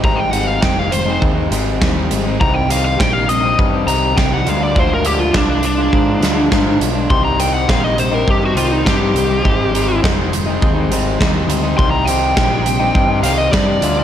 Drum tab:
HH |-x-x-x-x|-x-x-x-x|-x-x-x-x|-x-x-x-x|
SD |--o---o-|--o---o-|--o--oo-|--o---o-|
BD |o-o-o-o-|o-o-o-o-|o-o-o-o-|o-o-o-o-|

HH |-x-x-x-x|-x-x-x-x|
SD |--o---o-|--o---o-|
BD |o-o-o-o-|o-o-o-o-|